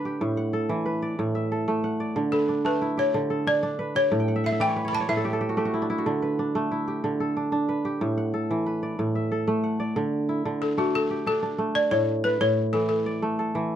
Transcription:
Already playing: D3 A3 D4 E4 B4
0.05 G4
0.21 A2
0.37 F#5
0.53 A4
0.69 E3
0.86 B4
1.02 D5
1.19 A2
1.35 E5
1.52 A4
1.68 A3
1.84 F#5
2.00 D5
2.16 D3
2.32 A4 B4
2.49 D4
2.65 A3 B4
2.82 E4
2.97 G4 C#5
3.14 D3
3.30 A4
3.47 D4 D5
3.63 D4
3.79 B4
3.95 G4 C#5
4.12 A2
4.20 G5
4.28 F#5
4.36 E5
4.44 E5 F#5
4.52 E5
4.60 E3 D5 G5
4.68 C#5
4.76 B4
4.85 C#5 B5
4.93 D5 A5
5.00 C#5
5.09 A2 B4 E5
5.17 A4
5.25 G4
5.33 A4
5.41 G4
5.49 F#4
5.57 A3 G4
5.65 F#4
5.74 E4
5.82 D4
5.90 E4
5.98 F#4
6.06 D3
6.22 B4
6.39 D4
6.55 A3
6.71 E4
6.88 G4
7.04 D3
7.20 A4
7.37 D4
7.52 D4
7.69 B4
7.85 G4
8.01 A2
8.18 F#5
8.34 A4
8.51 E3
8.66 B4
8.83 D5
8.99 A2
9.15 E5
9.32 A4
9.47 A3
9.64 F#5
9.80 D5
9.96 D3
10.29 E4
10.45 D3
10.62 A4
10.78 A3 F#4
10.95 A4
11.10 G4
11.26 D4 A4
11.43 D4
11.58 A3
11.75 D5
11.91 A2 C#5
12.24 B4
12.41 A2 C#5
12.73 E3 A4
12.89 A4
13.06 D5
13.22 A3
13.39 A4
13.55 E3

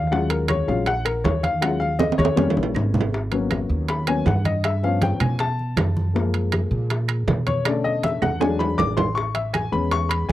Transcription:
Already playing: D#2
0.07 F#3 F5
0.12 G#3 C#4 F4 F#5, high bongo, high conga
0.30 A#4, high conga, high timbale
0.48 C#5, high bongo, high conga, high timbale, low timbale, claves
0.68 A#1 F#3 G#3 C#4 F4 F5, high conga
0.86 F#5, high bongo, high conga, high timbale
1.05 A#4, high conga, high timbale, claves
1.24 D#2 C#5, high bongo, low bongo, high conga, low timbale
1.43 F5, high conga, high timbale
1.61 F#3 G#3 C#4 F4 F#5, high bongo, high conga, high timbale, claves
1.80 F5, high bongo, high conga
1.99 D#5, high bongo, high conga, high timbale
2.12 high timbale
2.18 D#2 C#5, high bongo, high conga, claves
2.25 high timbale
2.36 G3 A#3 C#4, high bongo, high conga, high timbale
2.50 low timbale
2.56 A#1, low bongo
2.63 low timbale
2.74 G#1, low bongo, claves
2.94 low bongo, low conga
3.01 low timbale
3.13 high bongo, high conga
3.31 F#3 A#3 B3 C#4, high conga, high timbale
3.51 high bongo, high conga, high timbale, low timbale, claves
3.69 D#2, high conga
3.89 B5, high bongo, high conga, high timbale
4.07 F#3 A#3 B3 C#4 G#5, high conga, high timbale, claves
4.26 G2 F#5, high bongo, low bongo, high conga, low timbale
4.45 D#5, high conga, high timbale
4.64 E5, high bongo, high conga, high timbale, claves
4.83 F3 B3 C#4 F5, high bongo, high conga
5.02 G5, high bongo, high conga, high timbale, low timbale
5.20 B2 G#5, high bongo, high conga, low conga, high timbale, claves
5.39 A5, high bongo, high conga, high timbale
5.59 high conga
5.77 F#2, high bongo, low bongo, high conga, high timbale, low timbale, claves
5.97 high bongo, high conga
6.14 F3 G#3 A#3, high bongo, high conga
6.34 high conga, high timbale
6.52 high bongo, high conga, high timbale, low timbale, claves
6.71 A#2, high conga
6.90 high bongo, high conga, high timbale
7.08 high conga, high timbale, claves
7.27 B2, high bongo, low bongo, high conga, low timbale
7.47 C#5, high conga, high timbale
7.65 D3 A3 C#4 D5, high bongo, high conga, high timbale, claves
7.84 D#5, high bongo, high conga
8.03 E5, high bongo, high conga, high timbale, low timbale
8.22 E2 F#5, high bongo, high conga, low conga, high timbale, claves
8.40 F#3 G#3 D4 G#5, high bongo, high timbale
8.59 B5, low bongo, high conga, low timbale
8.78 A1 D6, low bongo, high conga, low timbale, claves
8.97 C6, low bongo, high conga, low timbale
9.15 C#6, high bongo, high conga
9.35 E5, high conga, high timbale
9.54 G#5, high bongo, high conga, high timbale, low timbale, claves
9.72 E2 G#3 B3 C#4 B5, high conga
9.91 C#6, high bongo, high conga, high timbale
10.09 B5, high conga, high timbale, claves
10.29 G#5

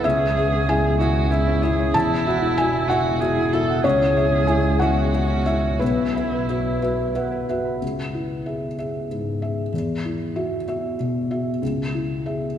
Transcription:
0.04 C#2 C#4 G#4 E5
0.37 G#4 C#5 E5
0.52 C#4
0.68 E4 G#4 E5 G#5
0.99 C#4 E4 F#4 G#4 E5
1.31 E4 G#4 E5
1.47 C#4
1.62 E4 G#4 E5
1.80 C#5
1.94 E1 E2 E4 A5
2.27 F#4 E5 F#5
2.42 E4
2.58 E4 F#4 E5 G#5
2.88 E4 F#4 E5 F#5
3.21 F#4 G#4 E5
3.36 E4
3.52 E4 F#4 A4 E5
3.68 F#5
3.84 C#2 C#4 G#4 C#5
4.16 G#4 C#5 E5
4.32 C#4
4.47 E4 G#4 E5 G#5
4.79 C#4 E4 F#4 G#4 E5 F#5
5.14 G#4 E5
5.30 C#4
5.46 E4 G#4 E5
5.63 C#5
5.79 B1 E4 B4
6.14 B4 E5 B5
6.31 B4
6.49 F#4 B4 E5
6.82 F#4 B4 E5
7.15 B4 E5 F#5
7.32 B4
7.48 F#4 B4 E5 F#5
7.65 B5
7.82 C#2
8.14 E4
8.46 G#4 E5
8.78 G#4 E5
9.11 G#2
9.42 G#4 E5
9.73 E2
10.05 E4
10.36 F#4 E5
10.68 F#4 E5
10.99 B2
11.31 F#4 E5
11.62 C#2
11.94 E4
12.26 G#4 E5

